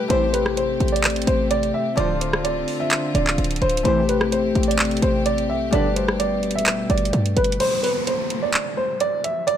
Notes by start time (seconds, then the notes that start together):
Already playing: G3 A3 D4 G4 A4 B4
0.08 A1 C2 A2 C3 E3 A3 E4 G4 C5, closed hi-hat
0.33 B4, closed hi-hat
0.46 cross-stick
0.57 C5, closed hi-hat
0.80 A1, closed hi-hat
0.88 closed hi-hat
0.92 D5, closed hi-hat
1.04 clap, closed hi-hat
1.10 closed hi-hat
1.16 closed hi-hat
1.22 closed hi-hat
1.27 A1 C5, closed hi-hat
1.51 D5, closed hi-hat
1.63 closed hi-hat
1.74 E5
1.96 D1 D2 C3 D3 F3 C4 D4 F4 C5 D5, closed hi-hat
2.21 C5, closed hi-hat
2.33 cross-stick
2.44 D5, closed hi-hat
2.68 open hi-hat
2.80 E5
2.91 clap, closed hi-hat
3.15 D1 D5, closed hi-hat
3.27 clap
3.38 D1, closed hi-hat
3.44 closed hi-hat
3.51 closed hi-hat
3.56 closed hi-hat
3.62 D1 C5, closed hi-hat
3.69 closed hi-hat
3.77 closed hi-hat
3.83 A1 C2 A2 C3 E3 A3 E4 G4 C5, closed hi-hat
4.09 B4, closed hi-hat
4.21 cross-stick
4.32 C5, closed hi-hat
4.55 A1, closed hi-hat
4.63 closed hi-hat
4.68 D5, closed hi-hat
4.79 clap, closed hi-hat
4.85 closed hi-hat
4.91 closed hi-hat
4.97 closed hi-hat
5.02 A1 C5, closed hi-hat
5.26 D5, closed hi-hat
5.38 closed hi-hat
5.49 B1 E5
5.71 G1 B1 A2 B2 D3 G3 D4 A4 B4 D5, closed hi-hat
5.96 C5, closed hi-hat
6.08 cross-stick
6.19 D5, closed hi-hat
6.43 closed hi-hat
6.51 closed hi-hat
6.55 E5, closed hi-hat
6.66 clap, closed hi-hat
6.90 G1 D5, closed hi-hat
6.98 closed hi-hat
7.05 closed hi-hat
7.13 G2, closed hi-hat
7.26 closed hi-hat
7.36 G1 B4, closed hi-hat
7.44 closed hi-hat
7.52 closed hi-hat
7.60 C5, closed hi-hat, crash, downlifter
7.83 B4, open hi-hat
8.07 C5, closed hi-hat
8.30 closed hi-hat
8.43 D5
8.53 clap, closed hi-hat
8.77 C5
9.00 D5, closed hi-hat
9.24 E5, closed hi-hat
9.47 D5, closed hi-hat